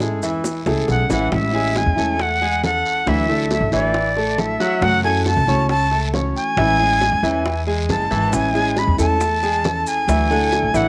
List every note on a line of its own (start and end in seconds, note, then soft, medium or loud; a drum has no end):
0.00 0.22 A2 medium
0.00 0.43 E3 soft
0.00 0.19 G#3 medium
0.00 0.43 G#3 medium
0.00 0.43 C#4 soft
0.00 0.44 E4 medium
0.00 0.19 G#4 medium
0.00 0.19 A4 medium
0.00 high bongo medium
0.00 short guiro medium
0.00 maracas soft
0.22 0.64 E2 medium
0.22 0.59 E3 medium
0.22 0.59 E4 medium
0.22 0.59 E5 medium
0.22 short guiro medium
0.22 maracas medium
0.44 muted nylon-string guitar stroke medium
0.44 high bongo medium
0.44 long guiro medium
0.44 maracas medium
0.66 0.86 C#2 medium
0.66 0.88 G#3 soft
0.66 1.02 A3 medium
0.66 0.88 C#4 soft
0.66 0.87 E4 medium
0.66 1.02 G#4 medium
0.66 1.02 A4 medium
0.66 high bongo medium
0.66 maracas soft
0.88 1.08 B1 medium
0.88 1.09 E3 soft
0.88 1.09 G#3 soft
0.88 1.09 C#4 soft
0.88 1.08 E4 soft
0.88 1.10 F#5 medium
0.88 low bongo medium
0.88 short guiro medium
0.88 maracas soft
1.09 1.29 A1 medium
1.09 1.28 E3 loud
1.09 1.30 G#3 soft
1.09 1.31 C#4 medium
1.09 1.31 E4 medium
1.09 1.28 E4 loud
1.09 1.28 E5 medium
1.09 1.31 F#5 medium
1.09 low bongo loud
1.09 short guiro medium
1.09 maracas medium
1.31 1.84 A1 loud
1.31 1.52 E3 medium
1.31 1.53 G#3 medium
1.31 1.52 C#4 medium
1.31 1.51 E4 medium
1.31 1.79 E5 medium
1.31 high bongo medium
1.31 long guiro medium
1.52 1.90 G#3 medium
1.52 1.74 G#3 medium
1.52 1.75 C#4 medium
1.52 1.74 E4 medium
1.52 1.90 G#4 medium
1.52 1.90 G#5 medium
1.74 1.96 E3 medium
1.74 1.97 G#3 soft
1.74 1.96 C#4 soft
1.74 1.95 E4 soft
1.74 2.23 G#5 medium
1.74 high bongo medium
1.74 short guiro medium
1.86 1.97 E2 medium
1.96 2.81 E2 medium
1.96 2.18 G#3 medium
1.96 2.34 A3 medium
1.96 2.18 C#4 medium
1.96 2.18 E4 medium
1.96 2.34 A4 medium
1.96 2.34 A5 medium
1.96 high bongo soft
1.96 short guiro medium
2.19 2.64 F#5 loud
2.19 muted nylon-string guitar stroke medium
2.19 high bongo medium
2.19 long guiro medium
2.42 2.60 G#3 medium
2.42 2.60 G#4 medium
2.42 2.60 G#5 medium
2.42 high bongo soft
2.63 3.06 E3 soft
2.63 3.07 C#4 soft
2.63 3.07 E4 soft
2.63 2.99 A4 medium
2.63 3.10 F#5 loud
2.63 2.99 A5 medium
2.63 high bongo soft
2.63 low bongo medium
2.63 short guiro medium
2.85 short guiro medium
3.06 3.59 D2 loud
3.06 3.28 D3 medium
3.06 3.25 E3 medium
3.06 3.28 F#3 medium
3.06 3.28 A3 medium
3.06 3.27 D4 medium
3.06 3.25 E4 medium
3.06 3.26 E4 medium
3.06 3.25 E5 medium
3.06 3.52 E5 loud
3.06 high bongo medium
3.06 long guiro medium
3.27 3.48 F#3 medium
3.27 3.65 A3 medium
3.27 3.49 A3 medium
3.27 3.50 D4 medium
3.27 3.49 E4 medium
3.27 3.65 A4 medium
3.27 3.65 A5 medium
3.49 3.71 F#3 medium
3.49 3.71 A3 medium
3.49 3.71 D4 soft
3.49 3.70 E4 medium
3.49 3.72 E5 medium
3.49 high bongo medium
3.49 short guiro medium
3.61 3.71 A1 medium
3.71 4.56 A1 medium
3.71 4.09 E3 loud
3.71 3.93 F#3 medium
3.71 3.93 A3 medium
3.71 3.93 D4 medium
3.71 3.93 E4 medium
3.71 4.09 E4 medium
3.71 4.41 D5 medium
3.71 4.09 E5 medium
3.71 high bongo soft
3.71 short guiro medium
3.94 muted nylon-string guitar stroke medium
3.94 high bongo medium
3.94 long guiro medium
4.16 4.52 A3 medium
4.16 4.52 A4 medium
4.16 4.53 A5 medium
4.16 high bongo soft
4.37 4.80 F#3 soft
4.37 4.81 A3 soft
4.37 4.81 D4 soft
4.37 4.82 E4 soft
4.37 4.84 E5 loud
4.37 high bongo soft
4.37 low bongo medium
4.37 short guiro medium
4.60 4.96 F#3 loud
4.60 4.96 F#4 loud
4.60 4.96 F#5 loud
4.60 short guiro medium
4.81 5.34 F#2 medium
4.81 5.03 C#3 medium
4.81 5.03 E3 medium
4.81 5.03 A3 medium
4.81 5.03 C#4 medium
4.81 5.03 F#4 medium
4.81 5.04 F#5 loud
4.81 high bongo medium
4.81 long guiro medium
5.04 5.25 E3 medium
5.04 5.40 A3 medium
5.04 5.25 A3 medium
5.04 5.26 C#4 medium
5.04 5.25 F#4 medium
5.04 5.40 A4 medium
5.04 5.24 G#5 loud
5.04 5.40 A5 medium
5.26 5.47 E3 medium
5.26 5.47 A3 medium
5.26 5.47 C#4 soft
5.26 5.46 F#4 medium
5.26 5.67 A5 loud
5.26 high bongo medium
5.26 short guiro medium
5.36 5.46 C#2 loud
5.47 6.31 C#2 medium
5.47 5.68 E3 medium
5.47 5.68 A3 medium
5.47 5.84 C#4 medium
5.47 5.69 C#4 medium
5.47 5.69 F#4 medium
5.47 5.84 C#5 medium
5.47 5.84 C#6 medium
5.47 high bongo soft
5.47 short guiro medium
5.69 6.06 A5 loud
5.69 muted nylon-string guitar stroke medium
5.69 high bongo medium
5.69 long guiro medium
5.92 6.10 A3 medium
5.92 6.10 A4 medium
5.92 6.10 A5 medium
5.92 high bongo soft
6.13 6.56 E3 soft
6.13 6.57 A3 soft
6.13 6.50 C#4 medium
6.13 6.57 C#4 soft
6.13 6.57 F#4 soft
6.13 6.50 C#5 medium
6.13 6.50 C#6 medium
6.13 high bongo soft
6.13 low bongo medium
6.13 short guiro medium
6.36 7.63 G#5 loud
6.36 short guiro medium
6.57 7.09 A1 loud
6.57 6.75 E3 medium
6.57 6.79 E3 medium
6.57 6.79 G#3 medium
6.57 6.79 C#4 medium
6.57 6.76 E4 medium
6.57 6.78 E4 medium
6.57 6.76 E5 loud
6.57 high bongo medium
6.57 long guiro medium
6.79 7.15 G#3 medium
6.79 7.01 G#3 medium
6.79 7.01 C#4 medium
6.79 7.00 E4 medium
6.79 7.15 G#4 medium
6.79 7.16 G#5 medium
7.01 7.22 E3 soft
7.01 7.23 G#3 medium
7.01 7.23 C#4 soft
7.01 7.22 E4 medium
7.01 high bongo medium
7.01 short guiro medium
7.12 7.22 E2 medium
7.23 7.85 E2 medium
7.23 7.59 E3 medium
7.23 7.44 G#3 medium
7.23 7.45 C#4 medium
7.23 7.44 E4 medium
7.23 7.59 E4 medium
7.23 7.60 E5 medium
7.23 high bongo soft
7.23 short guiro medium
7.45 muted nylon-string guitar stroke medium
7.45 high bongo medium
7.45 long guiro medium
7.67 8.03 G#3 medium
7.67 8.03 G#4 medium
7.67 8.03 G#5 medium
7.67 high bongo soft
7.88 8.09 F#1 medium
7.88 8.31 E3 soft
7.88 8.32 G#3 soft
7.88 8.32 C#4 soft
7.88 8.32 E4 soft
7.88 8.36 A5 medium
7.88 high bongo soft
7.88 low bongo medium
7.88 short guiro medium
8.11 8.31 G#1 medium
8.11 8.47 E3 loud
8.11 8.47 E4 loud
8.11 8.47 E5 loud
8.11 short guiro medium
8.32 8.85 A1 medium
8.32 8.54 E3 medium
8.32 8.54 G#3 medium
8.32 8.54 C#4 medium
8.32 8.52 E4 medium
8.32 8.80 G#5 loud
8.32 high bongo medium
8.32 long guiro medium
8.32 maracas medium
8.53 8.91 G#3 medium
8.53 8.76 G#3 medium
8.53 8.76 C#4 medium
8.53 8.75 E4 medium
8.53 8.91 G#4 medium
8.53 8.91 G#5 medium
8.53 maracas soft
8.76 8.97 E3 soft
8.76 8.98 G#3 soft
8.76 8.98 C#4 medium
8.76 8.97 E4 soft
8.76 8.99 B5 loud
8.76 high bongo medium
8.76 short guiro medium
8.76 maracas soft
8.87 8.98 E2 loud
8.98 9.82 E2 medium
8.98 9.19 G#3 medium
8.98 9.34 A3 medium
8.98 9.19 C#4 medium
8.98 9.19 E4 medium
8.98 9.35 A4 medium
8.98 9.35 A5 medium
8.98 9.90 A5 loud
8.98 high bongo soft
8.98 short guiro medium
8.98 maracas medium
9.20 muted nylon-string guitar stroke medium
9.20 high bongo medium
9.20 long guiro medium
9.20 maracas medium
9.43 9.61 G#3 medium
9.43 9.61 G#4 medium
9.43 9.61 G#5 medium
9.43 high bongo soft
9.43 maracas soft
9.63 10.07 E3 soft
9.63 10.08 C#4 soft
9.63 10.08 E4 soft
9.63 10.01 A4 medium
9.63 10.01 A5 medium
9.63 high bongo soft
9.63 low bongo medium
9.63 short guiro medium
9.63 maracas soft
9.86 10.78 G#5 loud
9.86 short guiro medium
9.86 maracas medium
10.07 10.60 D2 medium
10.07 10.29 D3 medium
10.07 10.26 E3 medium
10.07 10.29 F#3 medium
10.07 10.29 A3 medium
10.07 10.29 D4 medium
10.07 10.27 E4 medium
10.07 10.28 E4 medium
10.07 10.27 E5 medium
10.07 high bongo medium
10.07 long guiro medium
10.07 maracas medium
10.30 10.50 F#3 medium
10.30 10.66 A3 medium
10.30 10.51 A3 medium
10.30 10.51 D4 medium
10.30 10.51 E4 medium
10.30 10.66 A4 medium
10.30 10.67 F#5 medium
10.30 maracas soft
10.51 10.73 F#3 medium
10.51 10.73 A3 medium
10.51 10.73 D4 medium
10.51 10.73 E4 medium
10.51 high bongo medium
10.51 short guiro medium
10.51 maracas soft
10.63 10.73 A1 medium
10.74 10.88 A1 medium
10.74 10.88 E3 medium
10.74 10.88 F#3 medium
10.74 10.88 A3 medium
10.74 10.88 D4 medium
10.74 10.88 E4 medium
10.74 10.88 E5 medium
10.74 10.88 F#5 loud
10.74 high bongo soft
10.74 short guiro medium
10.74 maracas medium